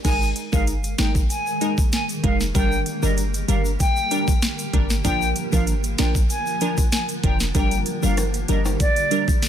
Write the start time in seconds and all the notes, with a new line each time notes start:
0.04 G#1 D#3 G#3 A#3 D#4 G#4 A#4 G#5, kick, closed hi-hat, crash, shaker
0.22 shaker
0.36 closed hi-hat, shaker
0.52 G1 G#3 D#4 A#4 F5, kick, shaker
0.67 closed hi-hat, shaker
0.84 closed hi-hat, shaker
0.98 G#1 G#3 D#4 A#4 G5, snare, closed hi-hat, shaker
1.15 kick, shaker
1.30 G#5, closed hi-hat, shaker
1.47 shaker
1.61 G#3 D#4 A#4, closed hi-hat, shaker
1.78 kick, shaker
1.92 G#5, snare, closed hi-hat, shaker
2.09 closed hi-hat, shaker
2.23 F1 G#3 D#4 A#4 F5, kick, closed hi-hat
2.41 snare, shaker
2.54 G1 D3 G3 D4 G4 A#4 G5, kick, closed hi-hat, shaker
2.72 shaker
2.86 closed hi-hat, shaker
3.02 G1 G3 D4 A#4 D#5, shaker
3.18 closed hi-hat, shaker
3.34 closed hi-hat, shaker
3.48 G1 G3 D4 A#4 F5, closed hi-hat, shaker
3.65 shaker
3.80 G5, kick, closed hi-hat, shaker
3.96 shaker
4.11 G3 D4 A#4, closed hi-hat, shaker
4.28 kick, shaker
4.42 snare, closed hi-hat, shaker
4.59 closed hi-hat, shaker
4.73 G#1 G3 D4 A#4, kick, closed hi-hat
4.90 snare, shaker
5.04 A#1 F3 D4 F4 A#4 G5, kick, closed hi-hat, shaker
5.22 shaker
5.36 closed hi-hat, shaker
5.52 G#1 F3 D4 A#4 F5, kick, shaker
5.67 closed hi-hat, shaker
5.84 closed hi-hat, shaker
5.98 A#1 F3 D4 A#4 G5, snare, closed hi-hat, shaker
6.15 kick, shaker
6.30 G#5, closed hi-hat, shaker
6.46 shaker
6.61 F3 D4 A#4, closed hi-hat, shaker
6.78 kick, shaker
6.92 G#5, snare, closed hi-hat, shaker
7.09 closed hi-hat, shaker
7.23 F1 F3 D4 A#4 G5, kick, closed hi-hat
7.40 snare, shaker
7.55 G1 G3 A#3 D4 G4 A#4 G5, kick, closed hi-hat, shaker
7.71 closed hi-hat, shaker
7.86 closed hi-hat, shaker
8.03 G1 G3 D4 A#4 F5, shaker
8.17 cross-stick, closed hi-hat, high timbale, shaker
8.34 closed hi-hat, shaker
8.48 G1 G3 D4 A#4 D#5, closed hi-hat, shaker
8.65 high timbale, shaker
8.80 D5, kick, closed hi-hat, shaker
8.96 closed hi-hat, shaker
9.11 G3 D4 A#4, closed hi-hat, shaker
9.28 kick, shaker
9.42 snare, closed hi-hat, shaker